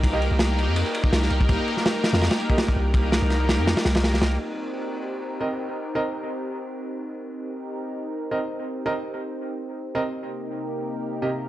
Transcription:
Already playing: 808-style bass C2
0.03 analog synth pad A#3 D#4 G4 A#4, kick, ride
0.13 grand piano A#3 G4 D#5
0.22 ride
0.31 808-style bass C2, analog synth pad A#3 D#4 G4 A#4
0.39 snare, ride
0.59 ride
0.68 808-style bass F2
0.76 ride
0.86 ride
0.95 ride
1.04 analog synth pad A#3 D#4 G4 A#4, kick
1.13 808-style bass C2, snare, ride
1.22 snare
1.30 808-style bass C2, ride
1.41 kick
1.49 808-style bass C2, analog synth pad A#3 D#4 G4 A#4, kick, ride
1.68 ride
1.77 analog synth pad A#3 D#4 G4 A#4, snare
1.86 snare, ride
2.04 snare, ride
2.13 808-style bass F2, snare, ride
2.21 snare, ride
2.31 snare, ride
2.40 ride
2.50 grand piano A#3 G4 D#5, kick
2.58 snare, ride
2.68 kick
2.76 808-style bass C2
2.94 analog synth pad A#3 D#4 G4 A#4, kick, ride
3.12 snare, ride
3.22 808-style bass C2, analog synth pad A#3 D#4 G4 A#4
3.30 snare, ride
3.49 snare, ride
3.59 808-style bass F2
3.67 snare, ride
3.77 snare, ride
3.85 808-style bass C2, snare, ride
3.95 snare, ride
4.03 analog synth pad A#3 D#4 G4 A#4, snare, ride
4.14 snare
4.22 808-style bass C2, snare, ride
4.40 analog synth pad C4 D#4 G4 A#4
5.41 grand piano C4 A#4 D#5
5.95 grand piano C4 A#4 D#5
7.31 analog synth pad C4 D#4 G4 A#4
8.31 grand piano C4 A#4 D#5
8.86 grand piano C4 A#4 D#5
9.95 grand piano C4 A#4 D#5
10.22 analog synth pad C3 A#3 D#4 G4 A#4
11.22 grand piano C3 A#3 G4 D#5

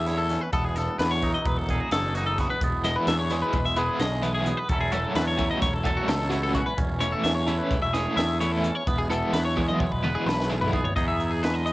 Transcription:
Already playing: clean electric guitar E2 A3 C#4 G#4, picked electric bass E2
0.06 clean electric guitar E4 C#5, snare, closed hi-hat
0.18 clean electric guitar A4
0.29 clean electric guitar E2 C#4, snare, closed hi-hat
0.41 clean electric guitar B4
0.53 picked electric bass E1, clean electric guitar E2 B3 A4, kick, closed hi-hat
0.65 clean electric guitar G#4
0.76 clean electric guitar A4, snare, closed hi-hat
0.99 picked electric bass E2, clean electric guitar B4, snare, closed hi-hat
1.11 clean electric guitar C#5
1.22 clean electric guitar F#3 D#4, kick, snare, closed hi-hat
1.34 clean electric guitar D#5
1.45 picked electric bass E1, clean electric guitar B4, kick, closed hi-hat
1.58 clean electric guitar A4
1.69 clean electric guitar G#4, kick, closed hi-hat
1.80 clean electric guitar F#4
1.91 picked electric bass F#1, clean electric guitar E2 A4, snare, closed hi-hat
2.15 clean electric guitar D#4 F#4, snare, closed hi-hat
2.26 clean electric guitar A4
2.38 clean electric guitar E2 B3 F#4, kick, snare, closed hi-hat
2.50 clean electric guitar B4
2.61 picked electric bass E1, clean electric guitar E2 B3, kick, closed hi-hat
2.84 overdriven electric guitar E3 G#3 B3 E4, clean electric guitar D#5, snare, closed hi-hat
2.96 clean electric guitar B4
3.07 picked electric bass E2, clean electric guitar E5, snare, closed hi-hat
3.19 clean electric guitar C#5
3.30 overdriven electric guitar E3 G#3 B3 E4, clean electric guitar G#3, snare, closed hi-hat
3.42 clean electric guitar B4
3.53 picked electric bass E1, kick, closed hi-hat
3.65 clean electric guitar E5
3.76 overdriven electric guitar E3 G#3 B3 E4, clean electric guitar G#4 B4, closed hi-hat
4.00 picked electric bass B1, clean electric guitar E2 D#5, snare, closed hi-hat
4.23 overdriven electric guitar E3 G#3 B3 E4, clean electric guitar B4, closed hi-hat
4.35 clean electric guitar G#4
4.46 clean electric guitar E2 B3, closed hi-hat
4.57 clean electric guitar B4
4.69 picked electric bass E1, clean electric guitar E2 F#3 C#4 E4 A4, kick, closed hi-hat
4.73 clean electric guitar A4
4.81 clean electric guitar G#4
4.92 overdriven electric guitar F#3 A3 C#4 F#4, clean electric guitar A4, closed hi-hat
5.15 picked electric bass E2, clean electric guitar B4, snare, closed hi-hat
5.28 clean electric guitar C#5
5.38 clean electric guitar F#3 E4, overdriven electric guitar F#3 A3 C#4 F#4, kick, closed hi-hat
5.51 clean electric guitar D#5
5.62 picked electric bass E1, clean electric guitar C#5, kick, snare, closed hi-hat
5.74 clean electric guitar A4
5.84 overdriven electric guitar F#3 A3 C#4 F#4, clean electric guitar A4, kick, closed hi-hat
5.97 clean electric guitar F#4
6.08 picked electric bass C#2, clean electric guitar E2 A4, snare, closed hi-hat
6.30 overdriven electric guitar F#3 A3 C#4 F#4, clean electric guitar E4 F#4, closed hi-hat
6.43 clean electric guitar A4
6.55 clean electric guitar E2 C#4 F#4, kick, closed hi-hat
6.66 clean electric guitar B4
6.77 picked electric bass E1, clean electric guitar E2 C#4, kick, closed hi-hat
7.00 overdriven electric guitar E3 A3 C#4 E4, clean electric guitar C#5, closed hi-hat
7.12 clean electric guitar A4
7.24 picked electric bass E2, clean electric guitar E5, snare, closed hi-hat
7.35 clean electric guitar C#5
7.46 overdriven electric guitar E3 A3 C#4 E4, clean electric guitar A3 E4, closed hi-hat
7.58 clean electric guitar B4
7.71 picked electric bass E1, kick, closed hi-hat
7.82 clean electric guitar E5
7.93 overdriven electric guitar E3 A3 C#4 E4, clean electric guitar G#4 C#5, snare, closed hi-hat
8.16 clean electric guitar E2 E5, picked electric bass E2, snare, closed hi-hat
8.40 overdriven electric guitar E3 A3 C#4 E4, clean electric guitar E4 C#5, closed hi-hat
8.52 clean electric guitar A4
8.63 clean electric guitar E2 C#4, closed hi-hat
8.75 clean electric guitar C#5
8.87 picked electric bass E1, clean electric guitar E2 B3 B4, kick, closed hi-hat
8.99 clean electric guitar G#4
9.10 overdriven electric guitar E3 G#3 B3 E4, clean electric guitar A4, closed hi-hat
9.33 picked electric bass E2, clean electric guitar B4, snare, closed hi-hat
9.45 clean electric guitar C#5
9.57 overdriven electric guitar E3 G#3 B3 E4, clean electric guitar G#3, kick
9.68 clean electric guitar D#5, high tom
9.80 picked electric bass E1, clean electric guitar C#5, kick
9.92 clean electric guitar B4, kick
10.03 overdriven electric guitar E3 G#3 B3 E4, clean electric guitar B4, mid tom
10.15 clean electric guitar G#4
10.26 picked electric bass B1, clean electric guitar E2 B4, snare
10.40 snare
10.50 overdriven electric guitar E3 G#3 B3 E4, clean electric guitar G#4
10.61 clean electric guitar B4, floor tom
10.72 clean electric guitar E2 B3 G#4, kick
10.84 clean electric guitar C#5, floor tom
10.96 clean electric guitar E2 B3 D#4 G#4 D#5, picked electric bass E2, kick, closed hi-hat
11.08 clean electric guitar E5
11.20 clean electric guitar D#4, closed hi-hat
11.31 clean electric guitar G#4
11.43 clean electric guitar G#3 B4, snare, closed hi-hat
11.54 clean electric guitar D#5
11.66 clean electric guitar D#5, closed hi-hat

